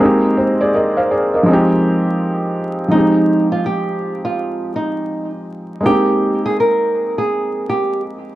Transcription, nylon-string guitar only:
2.92 3.47 D#4 medium
3.52 3.64 F4 medium
3.66 4.21 G4 medium
4.25 4.72 F4 medium
4.76 5.31 D#4 medium
5.86 6.41 G4 medium
6.46 6.57 G#4 medium
6.60 7.15 A#4 medium
7.18 7.65 G#4 medium
7.69 8.01 G4 medium

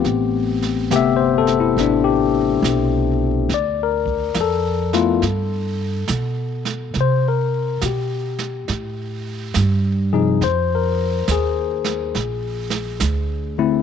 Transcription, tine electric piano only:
0.00 0.86 A3 soft
0.00 0.86 B3 soft
0.00 0.86 C4 medium
0.00 0.86 G4 medium
0.91 2.23 C3 medium
0.91 2.23 A3 medium
0.91 2.23 B3 medium
0.91 2.03 G4 medium
0.96 1.21 E5 medium
1.17 1.45 C5 medium
1.38 1.57 A4 medium
1.60 1.76 E4 medium
1.80 2.06 D4 medium
2.04 2.22 G4 medium
3.54 3.80 D5 medium
3.83 4.35 A#4 medium
4.41 5.78 A4 medium
4.94 5.20 A3 medium
4.94 5.21 B3 medium
4.94 5.20 E4 medium
4.94 5.21 F4 medium
7.01 7.27 C5 medium
7.28 7.81 A#4 medium
7.82 7.87 F#4 soft
7.86 9.24 G4 soft
10.13 10.40 C3 medium
10.13 10.40 F3 medium
10.13 10.40 D#4 medium
10.13 10.39 G#4 medium
10.44 10.71 C5 medium
10.75 11.27 A#4 medium
11.31 12.69 G#4 medium
13.58 13.82 D3 medium
13.58 13.82 A3 medium
13.58 13.82 C4 medium
13.58 13.82 E4 medium

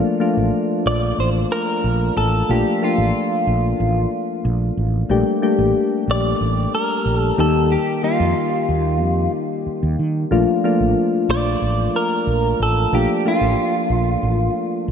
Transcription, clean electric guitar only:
0.87 1.20 D5 loud
1.20 1.29 C5 loud
1.52 2.17 A#4 loud
2.17 2.51 A4 loud
2.51 2.84 G4 medium
2.84 4.10 F4 medium
6.11 6.74 D5 loud
6.75 7.18 A#4 loud
7.18 7.35 A4 loud
7.40 7.73 A4 medium
7.72 8.04 G4 medium
8.04 9.31 F4 medium
11.31 11.96 D5 loud
11.96 12.62 A#4 loud
12.63 12.95 A4 medium
12.95 13.27 G4 loud
13.28 14.53 F4 medium

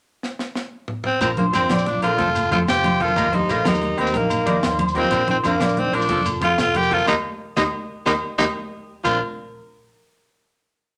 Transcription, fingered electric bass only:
1.21 1.49 A#1 medium
1.54 1.67 F2 medium
1.70 1.98 A#1 medium
2.03 2.17 A#1 medium
2.18 2.46 F1 loud
2.51 2.65 F2 medium
2.67 3.09 F1 loud
3.16 3.44 D#2 medium
3.49 3.63 A#1 medium
3.65 3.93 D#2 medium
3.98 4.12 D#2 medium
4.14 4.42 A#1 loud
4.47 4.61 D#3 loud
4.62 5.04 D#2 loud
5.12 5.39 A#1 medium
5.44 5.58 F2 medium
5.60 5.88 A#1 medium
5.93 6.07 A#1 medium
6.09 6.37 F1 medium
6.41 6.55 F2 medium
6.57 7.00 F1 loud
7.07 7.14 D#2 medium
7.57 7.63 D#2 loud
8.06 8.12 D#2 medium
8.39 8.45 D#2 medium
9.05 9.20 A#1 medium

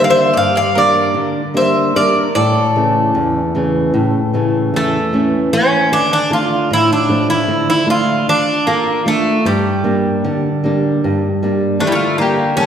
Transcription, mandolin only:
0.04 0.09 D5 medium
0.10 0.33 C5 medium
0.34 0.53 D5 medium
0.56 0.74 D5 medium
0.75 1.51 A#4 medium
1.57 1.93 C5 medium
1.97 2.33 A#4 medium
2.36 5.09 A4 medium
11.81 11.86 D4 medium
11.88 11.94 E4 medium
11.95 12.18 F4 medium
12.21 12.56 G4 medium
12.60 12.66 A4 medium

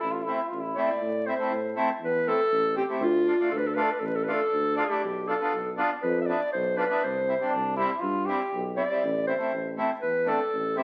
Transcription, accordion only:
0.25 0.39 A3 medium
0.25 0.40 C4 medium
0.25 0.40 E4 medium
0.76 0.89 A3 medium
0.76 0.90 C4 medium
0.76 0.90 E4 medium
1.27 1.34 C4 medium
1.27 1.34 E4 medium
1.38 1.52 A3 medium
1.38 1.53 C4 medium
1.38 1.53 E4 medium
1.75 1.89 A3 medium
1.75 1.89 C4 medium
1.75 1.90 E4 loud
2.26 2.40 A3 medium
2.26 2.40 C4 medium
2.26 2.40 E4 medium
2.75 2.83 C4 medium
2.75 2.84 G4 medium
2.89 3.02 A3 medium
2.89 3.02 C4 medium
2.89 3.03 E4 medium
3.27 3.33 D4 medium
3.27 3.34 F4 medium
3.39 3.52 A3 medium
3.39 3.52 D4 medium
3.39 3.53 F4 medium
3.76 3.89 A3 medium
3.76 3.90 D4 medium
3.76 3.90 F4 medium
4.26 4.39 A3 medium
4.26 4.40 D4 medium
4.26 4.41 F4 medium
4.76 4.83 D4 medium
4.76 4.84 F4 loud
4.88 5.02 A3 medium
4.88 5.02 D4 medium
4.88 5.03 E4 medium
5.27 5.34 D4 medium
5.27 5.35 F4 medium
5.41 5.53 B3 medium
5.41 5.53 D4 medium
5.41 5.54 F4 medium
5.77 5.90 B3 medium
5.77 5.90 D4 medium
5.77 5.90 F4 medium
6.27 6.40 B3 medium
6.27 6.40 D4 medium
6.27 6.41 E4 medium
6.77 6.83 D4 medium
6.77 6.84 F4 medium
6.89 7.02 B3 medium
6.89 7.03 D4 medium
6.89 7.03 E4 medium
7.27 7.34 C4 medium
7.27 7.34 E4 medium
7.40 7.53 G3 medium
7.40 7.53 C4 medium
7.40 7.54 D4 medium
7.77 7.90 G3 medium
7.77 7.90 C4 medium
7.77 7.91 E4 loud
8.28 8.40 G3 medium
8.28 8.40 C4 medium
8.28 8.41 E4 medium
8.76 8.83 C4 medium
8.76 8.84 E4 medium
8.90 9.02 G3 medium
8.90 9.03 C4 medium
8.90 9.03 E4 medium
9.26 9.33 C4 medium
9.26 9.34 E4 medium
9.37 9.51 A3 medium
9.37 9.52 C4 medium
9.37 9.53 E4 medium
9.76 9.89 A3 medium
9.76 9.90 C4 medium
9.76 9.90 E4 medium
10.25 10.39 A3 medium
10.25 10.39 C4 medium
10.25 10.40 D4 medium
10.76 10.83 C4 medium
10.76 10.83 E4 medium

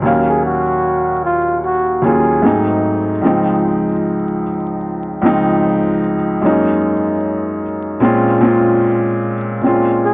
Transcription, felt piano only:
0.02 1.21 D#2 medium
0.02 1.22 F#3 medium
0.02 1.22 A#3 medium
0.02 1.23 C#4 medium
0.07 1.24 F5 medium
2.02 2.43 D#2 medium
2.02 2.42 F#3 medium
2.02 2.44 A#3 medium
2.02 2.44 C#4 medium
2.06 2.45 F4 medium
2.42 3.11 G#2 medium
2.42 3.12 F#3 medium
2.42 3.12 A3 medium
2.42 3.13 C4 medium
2.47 3.13 D#4 medium
3.22 4.41 C#2 medium
3.22 4.42 F3 medium
3.22 4.42 G#3 medium
3.22 4.43 C4 medium
3.27 4.44 D#4 medium
5.21 6.13 C#2 medium
5.21 6.14 F3 medium
5.21 6.14 G#3 medium
5.21 6.15 C4 medium
5.26 6.15 D#4 loud
6.41 7.61 F#2 medium
6.41 7.61 G#3 medium
6.41 7.62 A#3 medium
6.41 7.63 C#4 medium
6.46 7.63 D#4 medium
8.00 8.36 A#2 medium
8.00 8.37 G#3 medium
8.00 8.37 C4 medium
8.00 8.38 C#4 medium
8.05 8.38 F4 loud
8.41 9.33 A#2 loud
8.41 9.33 G#3 medium
8.41 9.34 C4 medium
8.41 9.35 C#4 medium
8.45 9.35 F4 loud
9.62 10.14 A#2 medium
9.62 10.14 G#3 medium
9.62 10.14 C4 medium
9.62 10.14 C#4 medium
9.66 10.14 F4 medium

